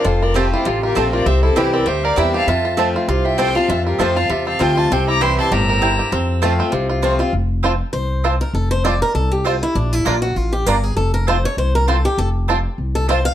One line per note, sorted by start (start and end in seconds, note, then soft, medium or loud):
0.04 0.53 F1 medium
0.04 0.63 F2 loud
0.04 0.21 F4 medium
0.04 0.24 A4 medium
0.04 0.24 C5 medium
0.22 0.52 F4 medium
0.22 0.37 A#4 loud
0.22 0.38 D5 medium
0.34 0.64 F3 medium
0.34 0.64 A3 medium
0.34 0.45 C4 medium
0.34 0.96 C4 medium
0.34 0.65 C4 medium
0.34 0.46 F4 medium
0.34 0.65 F4 loud
0.34 0.52 G4 medium
0.34 0.46 C5 loud
0.34 0.53 C5 medium
0.34 0.46 A5 loud
0.53 0.69 E4 medium
0.53 0.65 F4 medium
0.53 0.69 G4 medium
0.65 0.92 A1 medium
0.65 1.24 C3 medium
0.65 0.82 F4 medium
0.65 0.83 F4 medium
0.65 0.82 A4 medium
0.83 1.12 F4 medium
0.83 0.98 G4 medium
0.83 0.98 A#4 medium
0.95 1.22 A#1 medium
0.95 1.25 F3 medium
0.95 1.25 A3 medium
0.95 1.06 C4 medium
0.95 1.26 C4 medium
0.95 1.25 C4 medium
0.95 1.06 F4 medium
0.95 1.26 F4 medium
0.95 1.12 A4 medium
0.95 1.06 C5 medium
0.95 1.12 C5 medium
0.95 1.07 A5 loud
1.12 1.27 F4 medium
1.12 1.28 A#4 medium
1.12 1.28 D5 medium
1.26 1.50 C2 medium
1.26 1.84 C3 medium
1.26 1.73 C4 medium
1.26 1.43 C5 loud
1.26 1.43 E5 medium
1.43 1.84 E4 medium
1.43 1.58 A4 medium
1.43 1.57 C5 medium
1.56 1.82 C2 medium
1.56 1.85 E3 medium
1.56 1.86 G3 medium
1.56 1.66 C4 loud
1.56 1.86 C4 medium
1.56 1.67 E4 medium
1.56 1.86 E4 medium
1.56 1.75 G4 medium
1.56 1.86 G4 medium
1.56 1.74 C5 medium
1.56 1.67 C5 loud
1.56 1.67 G5 loud
1.73 2.79 C4 medium
1.73 1.89 A#4 medium
1.73 1.88 D5 medium
1.86 2.13 D2 medium
1.86 2.44 G2 medium
1.86 2.31 G4 medium
1.86 2.06 C5 medium
1.86 2.05 E5 medium
2.03 2.46 A#4 medium
2.03 2.21 D5 medium
2.03 2.19 F5 medium
2.16 2.43 E2 medium
2.16 2.46 E3 medium
2.16 2.46 G3 medium
2.16 2.27 C4 medium
2.16 2.47 C4 medium
2.16 2.27 E4 medium
2.16 2.48 E4 medium
2.16 2.47 E4 loud
2.16 2.27 C5 medium
2.16 2.34 E5 medium
2.16 2.27 G5 medium
2.16 2.33 G5 medium
2.34 2.48 G4 medium
2.34 2.49 F5 loud
2.34 2.48 A5 medium
2.47 2.95 F2 medium
2.47 3.06 F2 medium
2.47 2.65 F4 medium
2.47 2.78 E5 medium
2.47 2.78 A5 medium
2.65 2.95 F4 medium
2.77 3.07 F3 medium
2.77 3.07 A3 medium
2.77 2.88 C4 medium
2.77 3.07 C4 medium
2.77 3.39 C4 medium
2.77 2.88 F4 medium
2.77 3.07 F4 medium
2.77 2.88 C5 loud
2.77 2.88 A5 loud
2.96 3.07 F4 medium
3.08 3.56 C2 medium
3.08 3.67 C3 medium
3.08 3.24 F4 medium
3.08 3.27 C5 medium
3.08 3.27 F5 medium
3.25 3.55 F4 medium
3.25 3.39 E5 medium
3.25 3.40 G5 medium
3.38 3.55 F3 medium
3.38 3.55 A3 medium
3.38 3.48 C4 medium
3.38 4.47 C4 medium
3.38 3.55 C4 medium
3.38 3.49 F4 medium
3.38 3.54 F4 medium
3.38 3.49 C5 medium
3.38 3.57 G5 loud
3.38 3.49 A5 loud
3.38 3.57 C6 medium
3.55 3.69 C4 medium
3.55 3.68 F4 medium
3.55 3.69 F4 medium
3.55 3.70 F5 medium
3.55 3.70 A5 medium
3.69 3.93 F2 loud
3.69 4.27 F2 loud
3.69 3.85 F4 medium
3.69 3.85 E5 medium
3.69 3.86 A5 medium
3.86 3.98 F4 soft
3.86 4.01 G4 medium
3.86 4.02 A#4 medium
3.98 4.25 F2 medium
3.98 4.16 F3 medium
3.98 4.16 A3 medium
3.98 4.09 C4 medium
3.98 4.16 C4 medium
3.98 4.09 F4 loud
3.98 4.16 F4 medium
3.98 4.15 F4 medium
3.98 4.10 C5 medium
3.98 4.18 C5 medium
3.98 4.18 F5 medium
3.98 4.10 A5 loud
4.16 4.30 C4 soft
4.16 4.29 F4 medium
4.16 4.32 F5 loud
4.16 4.29 A5 loud
4.29 4.55 E2 medium
4.29 4.88 C3 medium
4.29 4.60 F4 medium
4.29 4.47 E5 medium
4.29 4.46 A5 medium
4.46 4.91 C4 medium
4.46 4.63 F5 loud
4.46 4.62 A5 medium
4.59 4.86 D2 medium
4.59 4.89 F3 loud
4.59 4.89 A3 medium
4.59 4.70 C4 medium
4.59 4.89 C4 medium
4.59 4.70 F4 medium
4.59 4.76 F4 medium
4.59 4.89 F4 medium
4.59 4.70 C5 medium
4.59 4.79 G5 medium
4.59 4.70 A5 loud
4.59 4.77 C6 medium
4.77 4.91 F4 medium
4.77 4.94 A5 loud
4.77 4.89 C6 loud
4.89 5.38 C2 medium
4.89 5.49 C3 loud
4.89 5.38 C4 medium
4.89 5.08 G5 medium
4.89 5.07 C6 medium
5.07 5.49 E4 medium
5.07 5.24 A#5 loud
5.07 5.22 D6 medium
5.21 5.50 E3 medium
5.21 5.50 G3 medium
5.21 5.31 C4 loud
5.21 5.50 C4 medium
5.21 5.31 E4 loud
5.21 5.51 E4 medium
5.21 5.51 G4 medium
5.21 5.31 C5 medium
5.21 5.31 G5 loud
5.21 5.38 C6 loud
5.21 5.38 E6 medium
5.38 6.12 C4 medium
5.38 5.54 A5 medium
5.38 5.54 C6 medium
5.51 5.99 G1 medium
5.51 5.80 A2 medium
5.51 5.95 G4 medium
5.51 6.13 A#5 medium
5.51 6.43 E6 medium
5.69 6.10 A#4 medium
5.81 6.11 G2 medium
5.81 5.91 C4 medium
5.81 5.92 E4 medium
5.81 6.12 E4 medium
5.81 5.92 C5 medium
5.81 5.92 G5 loud
5.99 6.12 G4 medium
6.12 6.59 F2 loud
6.12 6.70 F2 medium
6.12 6.56 C4 medium
6.42 6.71 F3 medium
6.42 6.71 A3 medium
6.42 6.52 C4 medium
6.42 6.72 C4 medium
6.42 6.52 F4 loud
6.42 6.71 F4 medium
6.42 6.72 F4 loud
6.42 6.52 C5 loud
6.42 6.52 A5 loud
6.60 7.01 C4 medium
6.72 7.20 C2 medium
6.72 7.30 C3 medium
6.72 6.88 F4 medium
6.89 7.02 F4 medium
7.02 7.19 F3 medium
7.02 7.19 A3 medium
7.02 7.12 C4 medium
7.02 7.19 C4 medium
7.02 7.13 F4 medium
7.02 7.19 F4 medium
7.02 7.18 F4 medium
7.02 7.13 C5 loud
7.02 7.13 A5 medium
7.19 7.33 C4 medium
7.19 7.32 F4 medium
7.19 7.33 F4 medium
7.33 7.80 F1 medium
7.63 7.73 C4 medium
7.63 7.71 C4 medium
7.63 7.73 F4 medium
7.63 7.72 F4 medium
7.63 7.74 C5 medium
7.63 7.74 A5 medium
7.93 8.41 C2 medium
7.93 8.37 C5 medium
8.24 8.34 C4 medium
8.24 8.32 C4 medium
8.24 8.34 F4 loud
8.24 8.32 F4 medium
8.24 8.34 C5 loud
8.24 8.34 A5 medium
8.41 8.54 A#4 medium
8.53 9.01 F1 medium
8.53 8.71 A4 medium
8.71 8.84 C5 medium
8.84 8.94 C4 loud
8.84 8.93 C4 medium
8.84 8.95 F4 loud
8.84 8.93 F4 medium
8.84 8.95 C5 medium
8.84 9.01 D5 medium
8.84 8.95 A5 medium
9.02 9.14 A#4 loud
9.14 9.62 C2 medium
9.14 9.31 A4 medium
9.32 9.45 G4 medium
9.44 9.55 C4 medium
9.44 9.53 C4 medium
9.44 9.55 F4 loud
9.44 9.62 F4 medium
9.44 9.54 F4 medium
9.44 9.55 C5 medium
9.44 9.55 A5 medium
9.63 9.76 E4 loud
9.75 9.99 A#1 loud
9.75 9.93 D4 medium
9.93 10.06 E4 loud
10.05 10.32 A#1 loud
10.05 10.16 A#3 loud
10.05 10.14 A#3 medium
10.05 10.14 D4 medium
10.05 10.16 F4 loud
10.05 10.21 F4 medium
10.05 10.14 F4 medium
10.05 10.16 D5 loud
10.05 10.16 A#5 loud
10.22 10.36 F#4 loud
10.36 10.62 A1 medium
10.36 10.53 F4 medium
10.53 10.66 G4 medium
10.66 10.92 G1 medium
10.66 10.76 A#3 medium
10.66 10.75 A#3 medium
10.66 10.75 D4 medium
10.66 10.77 F4 medium
10.66 10.75 F4 medium
10.66 10.83 A#4 loud
10.66 10.77 D5 loud
10.66 10.77 A#5 loud
10.83 10.96 G#4 medium
10.97 11.44 F1 medium
10.97 11.13 A4 medium
11.14 11.27 A#4 loud
11.27 11.37 C4 medium
11.27 11.35 C4 medium
11.27 11.37 F4 medium
11.27 11.36 F4 medium
11.27 11.37 C5 medium
11.27 11.44 C5 medium
11.27 11.38 A5 loud
11.45 11.58 C#5 loud
11.57 12.05 C2 medium
11.57 11.74 C5 medium
11.75 11.88 A#4 medium
11.88 11.98 C4 medium
11.88 11.96 C4 medium
11.88 11.98 F4 loud
11.88 11.96 F4 medium
11.88 12.04 A4 medium
11.88 11.98 C5 medium
11.88 11.98 A5 medium
12.05 12.18 G4 loud
12.18 12.65 F1 medium
12.18 12.28 A4 loud
12.48 12.58 C4 medium
12.48 12.57 C4 medium
12.48 12.58 F4 loud
12.48 12.57 F4 medium
12.48 12.59 C5 loud
12.48 12.59 A5 loud
12.78 13.26 C2 medium
12.95 13.08 A4 medium
13.08 13.19 C4 medium
13.08 13.17 C4 medium
13.08 13.19 F4 medium
13.08 13.17 F4 medium
13.08 13.25 C5 medium
13.08 13.19 C5 loud
13.08 13.19 A5 loud
13.25 13.34 F5 loud